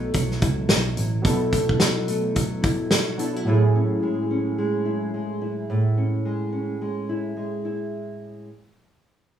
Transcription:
Already playing: B2 F#3 A3 B3 E4 A4
0.14 B1 F#3, kick, closed hi-hat
0.31 snare
0.42 C#2 E4, kick, closed hi-hat
0.69 B1 F#3, snare, closed hi-hat
0.97 A1 E4, closed hi-hat
1.22 B2 F#3 B3 E4, kick, closed hi-hat
1.27 A4
1.52 A3, kick, closed hi-hat
1.69 kick
1.80 F#3, snare, closed hi-hat
2.08 A3, closed hi-hat
2.35 F#3, kick, closed hi-hat
2.62 E4, kick, closed hi-hat
2.91 F#3, snare, closed hi-hat
3.17 F#3 B3 D4 E4 A4, closed hi-hat
3.36 E4
3.44 A2 F#3 A3 E4
3.49 G#4
3.75 C#4
4.03 G#3
4.30 C#4
4.58 G#3
4.85 E4
5.14 G#3
5.42 E4
5.70 A2
5.97 C#4
6.25 G#3
6.52 C#4
6.81 G#3
7.09 E4
7.37 G#3
7.65 E4

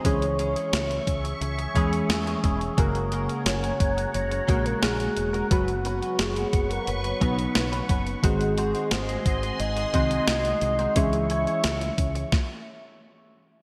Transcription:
0.04 C#2 E3 G#3 C#4 E4 G#4 C#5 E5 C#6, kick, closed hi-hat
0.22 closed hi-hat
0.39 G#3 C#4 E4 G#4, closed hi-hat
0.56 G#3 C#4 E4 G#4, closed hi-hat
0.73 C#2, snare, closed hi-hat
0.90 muted clean electric guitar stroke, closed hi-hat
1.07 C#2, kick, closed hi-hat
1.24 muted clean electric guitar stroke, closed hi-hat
1.41 C#2, muted clean electric guitar stroke, closed hi-hat
1.58 muted clean electric guitar stroke, closed hi-hat
1.75 E2 E3 G#3 C#4 E4 G#4, kick, closed hi-hat
1.92 muted clean electric guitar stroke, closed hi-hat
2.09 E2, muted clean electric guitar stroke, snare, closed hi-hat
2.27 G#3 C#4 E4 G#4, closed hi-hat
2.43 E1 G#3 C#4 E4 G#4, kick, closed hi-hat
2.61 muted clean electric guitar stroke, closed hi-hat
2.77 F#1 C#3 G#3 A#3 C#4 F#4 A#4 C#5 F#5 A#5, kick, closed hi-hat
2.95 closed hi-hat
3.12 G#3 C#4 F#4 A#4, closed hi-hat
3.29 G#3 C#4 F#4 A#4, closed hi-hat
3.46 F#1 C#5, muted clean electric guitar stroke, snare, closed hi-hat
3.63 muted clean electric guitar stroke, closed hi-hat
3.80 F#1, kick, closed hi-hat
3.97 muted clean electric guitar stroke, closed hi-hat
4.14 F#1 C#5, muted clean electric guitar stroke, closed hi-hat
4.31 muted clean electric guitar stroke, closed hi-hat
4.48 A#1 C#3 G#3 A#3 C#4 F#4 A#4, kick, closed hi-hat
4.65 A#4, muted clean electric guitar stroke, closed hi-hat
4.82 A#1 G#3 C#4 F#4 G#4 A#4, snare, closed hi-hat
4.99 muted clean electric guitar stroke, closed hi-hat
5.17 E1, muted clean electric guitar stroke, closed hi-hat
5.33 G#3 C#4 F#4 A#4, closed hi-hat
5.51 F#1 C#3 F#3 B3 C#4 F#4 B4 C#6, kick, closed hi-hat
5.68 closed hi-hat
5.85 B3 C#4 F#4 B4, closed hi-hat
6.02 B3 C#4 F#4 B4, closed hi-hat
6.19 F#1 G#4, muted clean electric guitar stroke, snare, closed hi-hat
6.36 muted clean electric guitar stroke, closed hi-hat
6.53 F#1, kick, closed hi-hat
6.70 A#4, muted clean electric guitar stroke, closed hi-hat
6.87 F#1 B4, muted clean electric guitar stroke, closed hi-hat
7.04 muted clean electric guitar stroke, closed hi-hat
7.21 B1 C#3 F#3 B3 C#4 D#4 F#4 B4, kick, closed hi-hat
7.39 muted clean electric guitar stroke, closed hi-hat
7.55 B1, muted clean electric guitar stroke, snare, closed hi-hat
7.72 B3 C#4 F#4 B4, closed hi-hat
7.89 F#1 B3 C#4 F#4 B4, kick, closed hi-hat
8.06 muted clean electric guitar stroke, closed hi-hat
8.23 G#1 D#3 G#3 C4 D#4 F#4 G#4 C5 D#5 C6, kick, closed hi-hat
8.41 closed hi-hat
8.57 G#3 D#4 F#4 C5, closed hi-hat
8.74 G#3 D#4 F#4 C5, closed hi-hat
8.91 G#1 C5, muted clean electric guitar stroke, snare, closed hi-hat
9.09 muted clean electric guitar stroke, closed hi-hat
9.26 G#1, kick, closed hi-hat
9.42 muted clean electric guitar stroke, closed hi-hat
9.59 G#1 D#5, muted clean electric guitar stroke, closed hi-hat
9.77 muted clean electric guitar stroke, closed hi-hat
9.93 C2 D#3 G#3 C4 D#4 F#4 C5, kick, closed hi-hat
10.11 muted clean electric guitar stroke, closed hi-hat
10.28 C2 G#3 D#4 F#4 C5, snare, closed hi-hat
10.45 muted clean electric guitar stroke, closed hi-hat
10.61 C2, muted clean electric guitar stroke, closed hi-hat
10.79 G#3 D#4 F#4 C5, closed hi-hat
10.96 C#2 E3 G#3 C#4 E4 G#4 C#5 E5 C#6, kick, closed hi-hat
11.13 closed hi-hat
11.30 C#4 E4 G#4 C#5, closed hi-hat
11.47 C#4 E4 G#4 C#5, closed hi-hat
11.64 C#2, muted clean electric guitar stroke, snare, closed hi-hat
11.81 muted clean electric guitar stroke, closed hi-hat
11.98 C#2, kick, closed hi-hat
12.15 muted clean electric guitar stroke, closed hi-hat
12.32 kick, snare

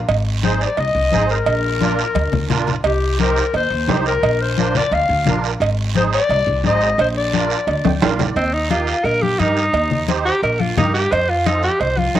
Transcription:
0.08 G#1, cowbell, high conga, long guiro
0.43 D#4 G#4 C5, high conga, short guiro
0.61 D5, short guiro
0.77 C2 D#5, cowbell, high conga, long guiro
0.95 C2
1.11 G#1 D#4 G#4 C5, high conga, short guiro
1.29 A#4, short guiro
1.46 A#1, cowbell, high conga, long guiro
1.80 D4 F4 A#4, high conga, short guiro
1.99 short guiro
2.15 D2, cowbell, high conga, long guiro
2.32 D2, low conga
2.49 A#1 D4 F4 A#4, low conga, short guiro
2.67 low conga, short guiro
2.84 C2 G4, cowbell, high conga, long guiro
3.19 D#4 G4 A#4 C5, high conga, short guiro
3.36 short guiro
3.54 D#2 C5, cowbell, high conga, long guiro
3.70 D#2
3.88 C2 D#4 G4 C5, high conga, low timbale, short guiro
4.06 A#4, short guiro
4.23 A#1, cowbell, high conga, long guiro
4.42 C5
4.57 D4 F4 A#4, high conga, short guiro
4.75 D5, low conga, short guiro
4.91 D2 F5, cowbell, high conga, long guiro
5.09 D2
5.26 A#1 D4 F4 A#4, high conga, low conga, short guiro
5.44 short guiro
5.60 G#1, cowbell, high conga, long guiro
5.95 D#4 G#4 C5, high conga, short guiro
6.13 D5, short guiro
6.29 C2, cowbell, high conga, long guiro
6.47 C2
6.64 G#1 D#4 G#4 C5 D#5, high conga, short guiro
6.81 short guiro
6.98 A#1 C5, cowbell, high conga, long guiro
7.17 D5
7.33 D4 F4 A#4, high conga, short guiro
7.50 short guiro
7.67 D2, cowbell, high conga, long guiro
7.85 D2 G5, high conga, high timbale
8.02 A#1 D4 F4 A#4 F5, high conga, low timbale, short guiro
8.19 D5, low conga, low timbale, short guiro
8.36 D#2 C4, cowbell, high conga, long guiro
8.54 D#4
8.70 D#4 F4 G4 A#4, cowbell, high conga, short guiro
8.87 short guiro
9.04 A#1 A#4, cowbell, high conga, long guiro
9.22 G4, high conga
9.39 G2 D#4 G4 A#4, cowbell, high conga, short guiro
9.57 short guiro
9.73 D#2, cowbell, high conga, long guiro
9.91 low conga
10.08 D#4 G4 C5, cowbell, high conga, short guiro
10.25 G4, short guiro
10.43 A#1 A#4, cowbell, high conga, long guiro
10.60 F4, high conga
10.77 G2 D#4 G4 A#4, cowbell, high conga, low conga, short guiro
10.94 G4, short guiro
11.12 F2 C5, cowbell, high conga, long guiro
11.30 F4
11.46 C4 D#4 F4 A4, cowbell, high conga, short guiro
11.63 G4, short guiro
11.80 C2 C5, cowbell, high conga, long guiro
11.98 F4, high conga
12.15 C2 C4 D#4 F4 A4, cowbell, high conga, low timbale, short guiro

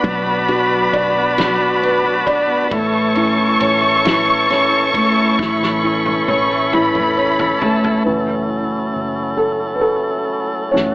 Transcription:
Already playing: B3 D4 F#4 B4 D5 B5
0.03 B1 F#3 A5, kick, ride
0.26 B3
0.48 D4 F#4, ride
0.71 F#3
0.93 B1 D4 D5, kick, ride
1.16 B3
1.38 F#3 F#4, snare, ride
1.60 B3
1.82 D4 B4, ride
2.04 F#3
2.26 D4 D5, kick, ride
2.48 B3
2.71 A1 E3 A3 E4 A4 C#5 C#6, kick, ride
2.92 A3
3.15 C#4 E4, ride
3.38 E3
3.60 A1 C#4 C#5, ride
3.82 A3
4.05 E3 E4, snare, ride
4.28 A3
4.50 C#4 C#5, snare, ride
4.72 E3
4.94 A3 C#4, kick, ride
5.17 A3
5.39 A1 E3 B5, kick, snare
5.61 A3, snare
5.83 C#4 E4
6.06 E3, high tom
6.28 A1 C#4 C#5 C#6, high tom
6.50 A3
6.72 E3 E4 B5, mid tom
6.95 A3, mid tom
7.17 C#4 C#5
7.39 E3, floor tom
7.62 A3 C#4 A5, floor tom
7.84 A3, floor tom
8.05 F#1 E3 F#3 A3 C#4 E4 A4 B4
8.96 F#1
9.37 A4
9.75 B4
9.81 A4
10.71 F#1 E3 A3 C#4 F#4 C#5
10.76 snare

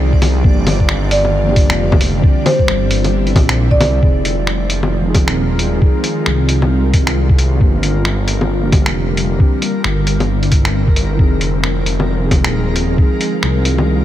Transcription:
Already playing: C2 D#3 F3 G#3 C4 D#4 F4 G#4 D5
0.13 kick
0.22 open hi-hat, low bongo
0.42 G1 D3 F3 G3 A#3 D4 F4 G4, kick
0.67 open hi-hat, low bongo
0.80 kick
0.89 finger snap
1.11 D5, open hi-hat
1.25 low bongo
1.43 F3 A#3
1.49 D4 G4
1.56 kick, open hi-hat
1.70 F1, finger snap, closed hi-hat
1.92 kick, low bongo
2.01 open hi-hat
2.20 E3 C4
2.24 C4 D4 E4 G4, kick
2.46 C5, open hi-hat, low bongo
2.59 kick
2.68 G1, finger snap
2.91 open hi-hat
3.04 closed hi-hat, low bongo
3.27 closed hi-hat
3.36 A#1, kick, open hi-hat, low bongo
3.49 finger snap, closed hi-hat
3.71 D5, kick
3.80 C2, open hi-hat, low bongo
4.01 F1 D#3 F3 G#3 C4 D#4 F4 G#4 A#4, kick
4.25 closed hi-hat
4.47 finger snap
4.70 closed hi-hat
4.83 low bongo
5.02 F3 C4
5.07 D#4 G#4
5.15 kick, closed hi-hat, low bongo
5.28 D#1, finger snap, closed hi-hat
5.59 closed hi-hat
5.78 F3 C4
5.82 D#4 G#4, kick
6.04 closed hi-hat
6.26 C2, finger snap
6.49 closed hi-hat
6.62 low bongo
6.94 kick, closed hi-hat
7.07 finger snap, closed hi-hat
7.30 kick
7.39 closed hi-hat
7.59 G1 D3 F3 G3 A#3 D4 G4, kick
7.83 closed hi-hat
8.05 finger snap
8.28 closed hi-hat
8.41 low bongo
8.60 F3 A#3
8.65 D4 G4
8.72 kick, closed hi-hat, low bongo
8.86 F1, finger snap, closed hi-hat
9.17 closed hi-hat
9.38 E3 C4 D4 E4 G4, kick
9.62 closed hi-hat
9.84 G1, finger snap
10.07 closed hi-hat
10.20 closed hi-hat, low bongo
10.43 closed hi-hat
10.52 kick, closed hi-hat
10.65 finger snap, closed hi-hat
10.88 kick
10.96 closed hi-hat
11.17 F1 D#3 F3 G#3 C4 D#4 F4 G#4, kick
11.41 closed hi-hat
11.64 finger snap
11.86 closed hi-hat
12.00 low bongo
12.18 F3 C4
12.24 D#4 G#4
12.31 kick, closed hi-hat, low bongo
12.44 D#1, finger snap, closed hi-hat
12.76 closed hi-hat
12.94 F3 C4
12.98 A#3 D#4, kick
13.02 G#4
13.21 closed hi-hat
13.43 C2, finger snap
13.65 closed hi-hat
13.78 low bongo

